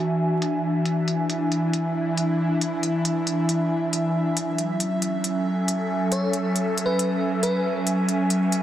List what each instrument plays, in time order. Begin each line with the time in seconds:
Already playing: analog synth pad E3 D4 F#4 E5 G#5
0.42 closed hi-hat
0.86 closed hi-hat
1.01 analog synth pad E4
1.08 closed hi-hat
1.30 closed hi-hat
1.52 closed hi-hat
1.73 closed hi-hat
2.17 closed hi-hat
2.61 closed hi-hat
2.83 closed hi-hat
3.05 closed hi-hat
3.27 closed hi-hat
3.49 closed hi-hat
3.93 closed hi-hat
4.37 closed hi-hat
4.46 analog synth pad F#3
4.58 closed hi-hat
4.67 analog synth pad C#4
4.80 closed hi-hat
5.02 closed hi-hat
5.24 analog synth pad G#5, closed hi-hat
5.35 analog synth pad A4
5.68 closed hi-hat
6.12 fm electric piano C#5, closed hi-hat
6.33 closed hi-hat
6.56 closed hi-hat
6.78 closed hi-hat
6.86 fm electric piano B4
6.99 closed hi-hat
7.43 fm electric piano B4, closed hi-hat
7.87 closed hi-hat
8.09 closed hi-hat
8.30 analog synth pad B4, closed hi-hat
8.52 closed hi-hat